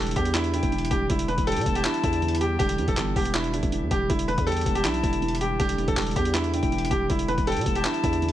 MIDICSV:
0, 0, Header, 1, 6, 480
1, 0, Start_track
1, 0, Key_signature, 1, "minor"
1, 0, Tempo, 375000
1, 1404, Time_signature, 4, 2, 24, 8
1, 10650, End_track
2, 0, Start_track
2, 0, Title_t, "Flute"
2, 0, Program_c, 0, 73
2, 687, Note_on_c, 0, 79, 86
2, 1362, Note_off_c, 0, 79, 0
2, 1884, Note_on_c, 0, 79, 93
2, 2112, Note_off_c, 0, 79, 0
2, 2124, Note_on_c, 0, 81, 97
2, 3033, Note_off_c, 0, 81, 0
2, 3084, Note_on_c, 0, 79, 85
2, 3312, Note_off_c, 0, 79, 0
2, 5726, Note_on_c, 0, 79, 84
2, 5953, Note_off_c, 0, 79, 0
2, 5965, Note_on_c, 0, 81, 86
2, 6873, Note_off_c, 0, 81, 0
2, 6924, Note_on_c, 0, 79, 81
2, 7152, Note_off_c, 0, 79, 0
2, 8368, Note_on_c, 0, 79, 87
2, 9043, Note_off_c, 0, 79, 0
2, 9565, Note_on_c, 0, 79, 93
2, 9793, Note_off_c, 0, 79, 0
2, 9804, Note_on_c, 0, 81, 95
2, 10650, Note_off_c, 0, 81, 0
2, 10650, End_track
3, 0, Start_track
3, 0, Title_t, "Grand piano"
3, 0, Program_c, 1, 0
3, 0, Note_on_c, 1, 69, 80
3, 185, Note_off_c, 1, 69, 0
3, 209, Note_on_c, 1, 67, 88
3, 420, Note_off_c, 1, 67, 0
3, 436, Note_on_c, 1, 64, 106
3, 653, Note_off_c, 1, 64, 0
3, 686, Note_on_c, 1, 64, 80
3, 1137, Note_off_c, 1, 64, 0
3, 1161, Note_on_c, 1, 67, 89
3, 1376, Note_off_c, 1, 67, 0
3, 1414, Note_on_c, 1, 64, 77
3, 1623, Note_off_c, 1, 64, 0
3, 1643, Note_on_c, 1, 71, 84
3, 1857, Note_off_c, 1, 71, 0
3, 1883, Note_on_c, 1, 69, 97
3, 2222, Note_off_c, 1, 69, 0
3, 2252, Note_on_c, 1, 67, 88
3, 2355, Note_off_c, 1, 67, 0
3, 2369, Note_on_c, 1, 64, 82
3, 2580, Note_off_c, 1, 64, 0
3, 2608, Note_on_c, 1, 64, 74
3, 3057, Note_off_c, 1, 64, 0
3, 3084, Note_on_c, 1, 67, 78
3, 3297, Note_off_c, 1, 67, 0
3, 3316, Note_on_c, 1, 67, 106
3, 3658, Note_off_c, 1, 67, 0
3, 3691, Note_on_c, 1, 69, 77
3, 4026, Note_off_c, 1, 69, 0
3, 4051, Note_on_c, 1, 67, 87
3, 4262, Note_off_c, 1, 67, 0
3, 4279, Note_on_c, 1, 64, 100
3, 4495, Note_off_c, 1, 64, 0
3, 4520, Note_on_c, 1, 64, 74
3, 4973, Note_off_c, 1, 64, 0
3, 5006, Note_on_c, 1, 67, 90
3, 5219, Note_off_c, 1, 67, 0
3, 5243, Note_on_c, 1, 64, 84
3, 5457, Note_off_c, 1, 64, 0
3, 5479, Note_on_c, 1, 71, 90
3, 5695, Note_off_c, 1, 71, 0
3, 5716, Note_on_c, 1, 69, 96
3, 6058, Note_off_c, 1, 69, 0
3, 6085, Note_on_c, 1, 67, 84
3, 6191, Note_off_c, 1, 67, 0
3, 6200, Note_on_c, 1, 64, 92
3, 6416, Note_off_c, 1, 64, 0
3, 6447, Note_on_c, 1, 64, 76
3, 6897, Note_off_c, 1, 64, 0
3, 6923, Note_on_c, 1, 67, 76
3, 7137, Note_off_c, 1, 67, 0
3, 7163, Note_on_c, 1, 67, 99
3, 7502, Note_off_c, 1, 67, 0
3, 7528, Note_on_c, 1, 69, 78
3, 7864, Note_off_c, 1, 69, 0
3, 7888, Note_on_c, 1, 67, 90
3, 8100, Note_off_c, 1, 67, 0
3, 8116, Note_on_c, 1, 64, 107
3, 8333, Note_off_c, 1, 64, 0
3, 8366, Note_on_c, 1, 64, 79
3, 8816, Note_off_c, 1, 64, 0
3, 8840, Note_on_c, 1, 67, 89
3, 9056, Note_off_c, 1, 67, 0
3, 9096, Note_on_c, 1, 64, 78
3, 9304, Note_off_c, 1, 64, 0
3, 9324, Note_on_c, 1, 71, 88
3, 9537, Note_off_c, 1, 71, 0
3, 9565, Note_on_c, 1, 69, 96
3, 9903, Note_off_c, 1, 69, 0
3, 9933, Note_on_c, 1, 67, 85
3, 10036, Note_off_c, 1, 67, 0
3, 10049, Note_on_c, 1, 64, 79
3, 10261, Note_off_c, 1, 64, 0
3, 10289, Note_on_c, 1, 64, 77
3, 10650, Note_off_c, 1, 64, 0
3, 10650, End_track
4, 0, Start_track
4, 0, Title_t, "Felt piano"
4, 0, Program_c, 2, 0
4, 0, Control_c, 2, 64, 127
4, 0, Note_on_c, 2, 50, 90
4, 0, Note_on_c, 2, 52, 83
4, 0, Note_on_c, 2, 55, 85
4, 0, Note_on_c, 2, 59, 84
4, 0, Note_on_c, 2, 62, 101
4, 205, Note_off_c, 2, 59, 0
4, 205, Note_on_c, 2, 59, 89
4, 445, Note_off_c, 2, 62, 0
4, 445, Note_on_c, 2, 62, 102
4, 666, Note_off_c, 2, 50, 0
4, 685, Note_on_c, 2, 50, 80
4, 907, Note_off_c, 2, 52, 0
4, 927, Note_on_c, 2, 52, 82
4, 1143, Note_off_c, 2, 55, 0
4, 1163, Note_on_c, 2, 55, 89
4, 1385, Note_off_c, 2, 50, 0
4, 1403, Note_off_c, 2, 55, 0
4, 1404, Note_off_c, 2, 59, 0
4, 1404, Note_off_c, 2, 62, 0
4, 1404, Note_on_c, 2, 50, 93
4, 1405, Note_off_c, 2, 52, 0
4, 1422, Control_c, 2, 64, 0
4, 1646, Note_on_c, 2, 52, 80
4, 1664, Control_c, 2, 64, 127
4, 1884, Note_on_c, 2, 55, 94
4, 2124, Note_on_c, 2, 59, 80
4, 2364, Note_on_c, 2, 62, 105
4, 2587, Note_off_c, 2, 50, 0
4, 2606, Note_on_c, 2, 50, 75
4, 2825, Note_off_c, 2, 52, 0
4, 2845, Note_on_c, 2, 52, 90
4, 3065, Note_off_c, 2, 55, 0
4, 3084, Note_on_c, 2, 55, 88
4, 3305, Note_off_c, 2, 50, 0
4, 3324, Note_off_c, 2, 59, 0
4, 3324, Note_on_c, 2, 50, 97
4, 3550, Note_off_c, 2, 52, 0
4, 3564, Note_off_c, 2, 62, 0
4, 3569, Note_on_c, 2, 52, 81
4, 3784, Note_off_c, 2, 55, 0
4, 3803, Note_on_c, 2, 55, 91
4, 4044, Note_on_c, 2, 59, 91
4, 4284, Note_on_c, 2, 62, 105
4, 4506, Note_off_c, 2, 50, 0
4, 4526, Note_on_c, 2, 50, 83
4, 4742, Note_off_c, 2, 52, 0
4, 4761, Note_on_c, 2, 52, 81
4, 4986, Note_off_c, 2, 55, 0
4, 5005, Note_on_c, 2, 55, 86
4, 5225, Note_off_c, 2, 50, 0
4, 5243, Note_off_c, 2, 52, 0
4, 5244, Note_off_c, 2, 55, 0
4, 5244, Note_off_c, 2, 59, 0
4, 5244, Note_off_c, 2, 62, 0
4, 5244, Note_on_c, 2, 50, 95
4, 5259, Control_c, 2, 64, 0
4, 5479, Control_c, 2, 64, 127
4, 5486, Note_on_c, 2, 52, 83
4, 5724, Note_on_c, 2, 55, 93
4, 5965, Note_on_c, 2, 59, 88
4, 6203, Note_on_c, 2, 62, 102
4, 6428, Note_off_c, 2, 50, 0
4, 6447, Note_on_c, 2, 50, 83
4, 6666, Note_off_c, 2, 52, 0
4, 6686, Note_on_c, 2, 52, 85
4, 6906, Note_off_c, 2, 55, 0
4, 6925, Note_on_c, 2, 55, 88
4, 7144, Note_off_c, 2, 50, 0
4, 7163, Note_on_c, 2, 50, 91
4, 7164, Note_off_c, 2, 59, 0
4, 7386, Note_off_c, 2, 52, 0
4, 7404, Note_off_c, 2, 62, 0
4, 7406, Note_on_c, 2, 52, 82
4, 7626, Note_off_c, 2, 55, 0
4, 7645, Note_on_c, 2, 55, 90
4, 7885, Note_on_c, 2, 59, 90
4, 8126, Note_on_c, 2, 62, 102
4, 8347, Note_off_c, 2, 50, 0
4, 8366, Note_on_c, 2, 50, 82
4, 8587, Note_off_c, 2, 52, 0
4, 8606, Note_on_c, 2, 52, 83
4, 8824, Note_off_c, 2, 55, 0
4, 8843, Note_on_c, 2, 55, 90
4, 9065, Note_off_c, 2, 50, 0
4, 9083, Note_off_c, 2, 55, 0
4, 9084, Note_on_c, 2, 50, 94
4, 9085, Note_off_c, 2, 52, 0
4, 9085, Note_off_c, 2, 59, 0
4, 9085, Note_off_c, 2, 62, 0
4, 9098, Control_c, 2, 64, 0
4, 9325, Note_on_c, 2, 52, 81
4, 9346, Control_c, 2, 64, 127
4, 9564, Note_on_c, 2, 55, 96
4, 9804, Note_on_c, 2, 59, 82
4, 10044, Note_on_c, 2, 62, 102
4, 10266, Note_off_c, 2, 50, 0
4, 10285, Note_on_c, 2, 50, 73
4, 10504, Note_off_c, 2, 52, 0
4, 10524, Note_on_c, 2, 52, 90
4, 10650, Note_off_c, 2, 50, 0
4, 10650, Note_off_c, 2, 52, 0
4, 10650, Note_off_c, 2, 55, 0
4, 10650, Note_off_c, 2, 59, 0
4, 10650, Note_off_c, 2, 62, 0
4, 10650, End_track
5, 0, Start_track
5, 0, Title_t, "808-style bass"
5, 0, Program_c, 3, 38
5, 0, Note_on_c, 3, 28, 107
5, 194, Note_off_c, 3, 28, 0
5, 204, Note_on_c, 3, 40, 104
5, 780, Note_off_c, 3, 40, 0
5, 805, Note_on_c, 3, 28, 103
5, 1150, Note_off_c, 3, 28, 0
5, 1164, Note_on_c, 3, 28, 102
5, 1394, Note_off_c, 3, 28, 0
5, 1404, Note_on_c, 3, 28, 113
5, 1750, Note_off_c, 3, 28, 0
5, 1764, Note_on_c, 3, 28, 107
5, 2004, Note_on_c, 3, 47, 100
5, 2023, Note_off_c, 3, 28, 0
5, 2118, Note_off_c, 3, 47, 0
5, 2124, Note_on_c, 3, 28, 104
5, 2355, Note_off_c, 3, 28, 0
5, 2604, Note_on_c, 3, 40, 109
5, 3295, Note_off_c, 3, 40, 0
5, 3324, Note_on_c, 3, 28, 112
5, 3565, Note_on_c, 3, 40, 105
5, 3584, Note_off_c, 3, 28, 0
5, 3678, Note_off_c, 3, 40, 0
5, 3683, Note_on_c, 3, 28, 99
5, 3799, Note_off_c, 3, 28, 0
5, 3804, Note_on_c, 3, 31, 111
5, 4034, Note_off_c, 3, 31, 0
5, 4044, Note_on_c, 3, 28, 103
5, 4620, Note_off_c, 3, 28, 0
5, 4645, Note_on_c, 3, 28, 111
5, 4884, Note_on_c, 3, 40, 100
5, 4903, Note_off_c, 3, 28, 0
5, 4998, Note_off_c, 3, 40, 0
5, 5004, Note_on_c, 3, 28, 102
5, 5235, Note_off_c, 3, 28, 0
5, 5244, Note_on_c, 3, 28, 118
5, 5590, Note_off_c, 3, 28, 0
5, 5604, Note_on_c, 3, 40, 103
5, 5950, Note_off_c, 3, 40, 0
5, 5965, Note_on_c, 3, 28, 107
5, 6203, Note_on_c, 3, 35, 105
5, 6222, Note_off_c, 3, 28, 0
5, 6432, Note_off_c, 3, 35, 0
5, 6445, Note_on_c, 3, 28, 107
5, 7135, Note_off_c, 3, 28, 0
5, 7164, Note_on_c, 3, 28, 119
5, 7510, Note_off_c, 3, 28, 0
5, 7524, Note_on_c, 3, 28, 102
5, 7635, Note_off_c, 3, 28, 0
5, 7643, Note_on_c, 3, 28, 109
5, 7874, Note_off_c, 3, 28, 0
5, 7884, Note_on_c, 3, 40, 103
5, 8460, Note_off_c, 3, 40, 0
5, 8484, Note_on_c, 3, 28, 106
5, 8830, Note_off_c, 3, 28, 0
5, 8844, Note_on_c, 3, 28, 103
5, 9074, Note_off_c, 3, 28, 0
5, 9084, Note_on_c, 3, 28, 116
5, 9430, Note_off_c, 3, 28, 0
5, 9443, Note_on_c, 3, 28, 109
5, 9683, Note_on_c, 3, 47, 102
5, 9703, Note_off_c, 3, 28, 0
5, 9798, Note_off_c, 3, 47, 0
5, 9805, Note_on_c, 3, 28, 105
5, 10035, Note_off_c, 3, 28, 0
5, 10284, Note_on_c, 3, 40, 108
5, 10650, Note_off_c, 3, 40, 0
5, 10650, End_track
6, 0, Start_track
6, 0, Title_t, "Drums"
6, 24, Note_on_c, 9, 42, 62
6, 84, Note_off_c, 9, 42, 0
6, 84, Note_on_c, 9, 42, 63
6, 144, Note_off_c, 9, 42, 0
6, 144, Note_on_c, 9, 42, 63
6, 204, Note_on_c, 9, 36, 96
6, 206, Note_off_c, 9, 42, 0
6, 206, Note_on_c, 9, 42, 77
6, 325, Note_off_c, 9, 42, 0
6, 325, Note_on_c, 9, 42, 67
6, 332, Note_off_c, 9, 36, 0
6, 442, Note_on_c, 9, 39, 122
6, 443, Note_off_c, 9, 42, 0
6, 443, Note_on_c, 9, 42, 87
6, 562, Note_off_c, 9, 42, 0
6, 562, Note_on_c, 9, 42, 59
6, 570, Note_off_c, 9, 39, 0
6, 686, Note_off_c, 9, 42, 0
6, 686, Note_on_c, 9, 42, 84
6, 803, Note_off_c, 9, 42, 0
6, 803, Note_on_c, 9, 42, 55
6, 805, Note_on_c, 9, 36, 99
6, 924, Note_off_c, 9, 42, 0
6, 924, Note_on_c, 9, 42, 45
6, 933, Note_off_c, 9, 36, 0
6, 1004, Note_off_c, 9, 42, 0
6, 1004, Note_on_c, 9, 42, 59
6, 1084, Note_off_c, 9, 42, 0
6, 1084, Note_on_c, 9, 42, 70
6, 1164, Note_off_c, 9, 42, 0
6, 1164, Note_on_c, 9, 36, 103
6, 1164, Note_on_c, 9, 42, 76
6, 1292, Note_off_c, 9, 36, 0
6, 1292, Note_off_c, 9, 42, 0
6, 1404, Note_on_c, 9, 36, 111
6, 1404, Note_on_c, 9, 42, 89
6, 1524, Note_off_c, 9, 42, 0
6, 1524, Note_on_c, 9, 42, 84
6, 1532, Note_off_c, 9, 36, 0
6, 1644, Note_off_c, 9, 42, 0
6, 1644, Note_on_c, 9, 42, 52
6, 1764, Note_off_c, 9, 42, 0
6, 1764, Note_on_c, 9, 36, 95
6, 1764, Note_on_c, 9, 42, 59
6, 1884, Note_off_c, 9, 42, 0
6, 1884, Note_on_c, 9, 42, 61
6, 1892, Note_off_c, 9, 36, 0
6, 1944, Note_off_c, 9, 42, 0
6, 1944, Note_on_c, 9, 42, 62
6, 2004, Note_off_c, 9, 42, 0
6, 2004, Note_on_c, 9, 42, 64
6, 2064, Note_off_c, 9, 42, 0
6, 2064, Note_on_c, 9, 42, 62
6, 2125, Note_on_c, 9, 36, 99
6, 2127, Note_off_c, 9, 42, 0
6, 2127, Note_on_c, 9, 42, 74
6, 2245, Note_off_c, 9, 42, 0
6, 2245, Note_on_c, 9, 42, 69
6, 2253, Note_off_c, 9, 36, 0
6, 2363, Note_on_c, 9, 39, 126
6, 2364, Note_off_c, 9, 42, 0
6, 2364, Note_on_c, 9, 42, 86
6, 2483, Note_off_c, 9, 42, 0
6, 2483, Note_on_c, 9, 42, 56
6, 2491, Note_off_c, 9, 39, 0
6, 2604, Note_on_c, 9, 36, 100
6, 2606, Note_off_c, 9, 42, 0
6, 2606, Note_on_c, 9, 42, 83
6, 2724, Note_off_c, 9, 42, 0
6, 2724, Note_on_c, 9, 42, 56
6, 2732, Note_off_c, 9, 36, 0
6, 2844, Note_off_c, 9, 42, 0
6, 2844, Note_on_c, 9, 42, 44
6, 2924, Note_off_c, 9, 42, 0
6, 2924, Note_on_c, 9, 42, 59
6, 3004, Note_off_c, 9, 42, 0
6, 3004, Note_on_c, 9, 42, 72
6, 3084, Note_off_c, 9, 42, 0
6, 3084, Note_on_c, 9, 42, 80
6, 3212, Note_off_c, 9, 42, 0
6, 3324, Note_on_c, 9, 36, 113
6, 3324, Note_on_c, 9, 42, 87
6, 3443, Note_off_c, 9, 42, 0
6, 3443, Note_on_c, 9, 42, 84
6, 3452, Note_off_c, 9, 36, 0
6, 3564, Note_off_c, 9, 42, 0
6, 3564, Note_on_c, 9, 42, 52
6, 3683, Note_off_c, 9, 42, 0
6, 3683, Note_on_c, 9, 36, 96
6, 3683, Note_on_c, 9, 42, 56
6, 3803, Note_off_c, 9, 42, 0
6, 3803, Note_on_c, 9, 39, 104
6, 3803, Note_on_c, 9, 42, 76
6, 3811, Note_off_c, 9, 36, 0
6, 3931, Note_off_c, 9, 39, 0
6, 3931, Note_off_c, 9, 42, 0
6, 4044, Note_on_c, 9, 36, 97
6, 4047, Note_on_c, 9, 46, 76
6, 4165, Note_on_c, 9, 42, 72
6, 4172, Note_off_c, 9, 36, 0
6, 4175, Note_off_c, 9, 46, 0
6, 4283, Note_off_c, 9, 42, 0
6, 4283, Note_on_c, 9, 39, 119
6, 4283, Note_on_c, 9, 42, 87
6, 4403, Note_off_c, 9, 42, 0
6, 4403, Note_on_c, 9, 42, 57
6, 4411, Note_off_c, 9, 39, 0
6, 4527, Note_off_c, 9, 42, 0
6, 4527, Note_on_c, 9, 42, 83
6, 4644, Note_off_c, 9, 42, 0
6, 4644, Note_on_c, 9, 42, 56
6, 4645, Note_on_c, 9, 36, 102
6, 4765, Note_off_c, 9, 42, 0
6, 4765, Note_on_c, 9, 42, 70
6, 4773, Note_off_c, 9, 36, 0
6, 4893, Note_off_c, 9, 42, 0
6, 5004, Note_on_c, 9, 36, 101
6, 5004, Note_on_c, 9, 42, 76
6, 5132, Note_off_c, 9, 36, 0
6, 5132, Note_off_c, 9, 42, 0
6, 5244, Note_on_c, 9, 36, 110
6, 5244, Note_on_c, 9, 42, 87
6, 5364, Note_off_c, 9, 42, 0
6, 5364, Note_on_c, 9, 42, 82
6, 5372, Note_off_c, 9, 36, 0
6, 5484, Note_off_c, 9, 42, 0
6, 5484, Note_on_c, 9, 42, 51
6, 5603, Note_off_c, 9, 42, 0
6, 5603, Note_on_c, 9, 42, 57
6, 5604, Note_on_c, 9, 36, 96
6, 5724, Note_off_c, 9, 42, 0
6, 5724, Note_on_c, 9, 42, 64
6, 5732, Note_off_c, 9, 36, 0
6, 5784, Note_off_c, 9, 42, 0
6, 5784, Note_on_c, 9, 42, 62
6, 5844, Note_off_c, 9, 42, 0
6, 5844, Note_on_c, 9, 42, 63
6, 5905, Note_off_c, 9, 42, 0
6, 5905, Note_on_c, 9, 42, 64
6, 5965, Note_on_c, 9, 36, 96
6, 5967, Note_off_c, 9, 42, 0
6, 5967, Note_on_c, 9, 42, 76
6, 6086, Note_off_c, 9, 42, 0
6, 6086, Note_on_c, 9, 42, 68
6, 6093, Note_off_c, 9, 36, 0
6, 6203, Note_on_c, 9, 39, 119
6, 6204, Note_off_c, 9, 42, 0
6, 6204, Note_on_c, 9, 42, 88
6, 6323, Note_off_c, 9, 42, 0
6, 6323, Note_on_c, 9, 42, 58
6, 6331, Note_off_c, 9, 39, 0
6, 6444, Note_on_c, 9, 36, 99
6, 6446, Note_off_c, 9, 42, 0
6, 6446, Note_on_c, 9, 42, 83
6, 6564, Note_off_c, 9, 42, 0
6, 6564, Note_on_c, 9, 42, 57
6, 6572, Note_off_c, 9, 36, 0
6, 6684, Note_off_c, 9, 42, 0
6, 6684, Note_on_c, 9, 42, 44
6, 6764, Note_off_c, 9, 42, 0
6, 6764, Note_on_c, 9, 42, 58
6, 6844, Note_off_c, 9, 42, 0
6, 6844, Note_on_c, 9, 42, 73
6, 6924, Note_off_c, 9, 42, 0
6, 6924, Note_on_c, 9, 42, 78
6, 7052, Note_off_c, 9, 42, 0
6, 7164, Note_on_c, 9, 36, 112
6, 7164, Note_on_c, 9, 42, 85
6, 7283, Note_off_c, 9, 42, 0
6, 7283, Note_on_c, 9, 42, 82
6, 7292, Note_off_c, 9, 36, 0
6, 7404, Note_off_c, 9, 42, 0
6, 7404, Note_on_c, 9, 42, 52
6, 7524, Note_off_c, 9, 42, 0
6, 7524, Note_on_c, 9, 36, 95
6, 7524, Note_on_c, 9, 42, 57
6, 7643, Note_on_c, 9, 39, 101
6, 7644, Note_off_c, 9, 42, 0
6, 7644, Note_on_c, 9, 42, 64
6, 7652, Note_off_c, 9, 36, 0
6, 7704, Note_off_c, 9, 42, 0
6, 7704, Note_on_c, 9, 42, 61
6, 7764, Note_off_c, 9, 42, 0
6, 7764, Note_on_c, 9, 42, 63
6, 7771, Note_off_c, 9, 39, 0
6, 7824, Note_off_c, 9, 42, 0
6, 7824, Note_on_c, 9, 42, 61
6, 7884, Note_on_c, 9, 36, 96
6, 7886, Note_off_c, 9, 42, 0
6, 7886, Note_on_c, 9, 42, 78
6, 8005, Note_off_c, 9, 42, 0
6, 8005, Note_on_c, 9, 42, 67
6, 8012, Note_off_c, 9, 36, 0
6, 8122, Note_on_c, 9, 39, 121
6, 8123, Note_off_c, 9, 42, 0
6, 8123, Note_on_c, 9, 42, 86
6, 8242, Note_off_c, 9, 42, 0
6, 8242, Note_on_c, 9, 42, 59
6, 8250, Note_off_c, 9, 39, 0
6, 8366, Note_off_c, 9, 42, 0
6, 8366, Note_on_c, 9, 42, 85
6, 8483, Note_off_c, 9, 42, 0
6, 8483, Note_on_c, 9, 42, 56
6, 8484, Note_on_c, 9, 36, 101
6, 8604, Note_off_c, 9, 42, 0
6, 8604, Note_on_c, 9, 42, 44
6, 8612, Note_off_c, 9, 36, 0
6, 8684, Note_off_c, 9, 42, 0
6, 8684, Note_on_c, 9, 42, 60
6, 8764, Note_off_c, 9, 42, 0
6, 8764, Note_on_c, 9, 42, 74
6, 8844, Note_off_c, 9, 42, 0
6, 8844, Note_on_c, 9, 36, 104
6, 8844, Note_on_c, 9, 42, 77
6, 8972, Note_off_c, 9, 36, 0
6, 8972, Note_off_c, 9, 42, 0
6, 9084, Note_on_c, 9, 36, 112
6, 9084, Note_on_c, 9, 42, 85
6, 9204, Note_off_c, 9, 42, 0
6, 9204, Note_on_c, 9, 42, 81
6, 9212, Note_off_c, 9, 36, 0
6, 9324, Note_off_c, 9, 42, 0
6, 9324, Note_on_c, 9, 42, 51
6, 9443, Note_on_c, 9, 36, 95
6, 9444, Note_off_c, 9, 42, 0
6, 9444, Note_on_c, 9, 42, 56
6, 9564, Note_off_c, 9, 42, 0
6, 9564, Note_on_c, 9, 42, 62
6, 9571, Note_off_c, 9, 36, 0
6, 9624, Note_off_c, 9, 42, 0
6, 9624, Note_on_c, 9, 42, 64
6, 9684, Note_off_c, 9, 42, 0
6, 9684, Note_on_c, 9, 42, 61
6, 9745, Note_off_c, 9, 42, 0
6, 9745, Note_on_c, 9, 42, 63
6, 9804, Note_on_c, 9, 36, 94
6, 9807, Note_off_c, 9, 42, 0
6, 9807, Note_on_c, 9, 42, 79
6, 9926, Note_off_c, 9, 42, 0
6, 9926, Note_on_c, 9, 42, 69
6, 9932, Note_off_c, 9, 36, 0
6, 10043, Note_on_c, 9, 39, 124
6, 10044, Note_off_c, 9, 42, 0
6, 10044, Note_on_c, 9, 42, 86
6, 10163, Note_off_c, 9, 42, 0
6, 10163, Note_on_c, 9, 42, 57
6, 10171, Note_off_c, 9, 39, 0
6, 10284, Note_on_c, 9, 36, 98
6, 10287, Note_off_c, 9, 42, 0
6, 10287, Note_on_c, 9, 42, 85
6, 10404, Note_off_c, 9, 42, 0
6, 10404, Note_on_c, 9, 42, 57
6, 10412, Note_off_c, 9, 36, 0
6, 10524, Note_off_c, 9, 42, 0
6, 10524, Note_on_c, 9, 42, 44
6, 10605, Note_off_c, 9, 42, 0
6, 10605, Note_on_c, 9, 42, 57
6, 10650, Note_off_c, 9, 42, 0
6, 10650, End_track
0, 0, End_of_file